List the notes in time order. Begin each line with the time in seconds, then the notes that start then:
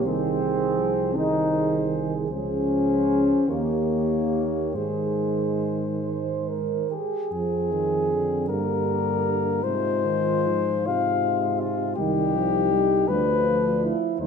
0.04 C2 D#3 C4 G#4 C5
0.42 D#3
0.79 F3
1.16 D#3 D#4 G#4 C5
2.30 C#2 F3 C#4 G#4 C5
3.48 D#2 D#3 A#3 G4 C#5
4.75 G#2 D#3 G#3 G#4 C5
6.05 C5
6.49 A#4
6.91 G4 G#4
7.31 F2 F3 C4 G#4
7.71 D#3
8.12 D3
8.48 G2 A#3 G4 A#4
9.63 G#2 C3 G#3 F4 C5
10.05 D#3
10.46 F3
10.86 C3 G#3 F4 F5
11.60 F4
11.96 C2 D#3 G3 D#4 G4
12.35 F3
12.72 G3
13.08 D2 F3 D4 B4
13.47 D4
13.84 E4
14.19 D#2 D#3 G3 D#4 C5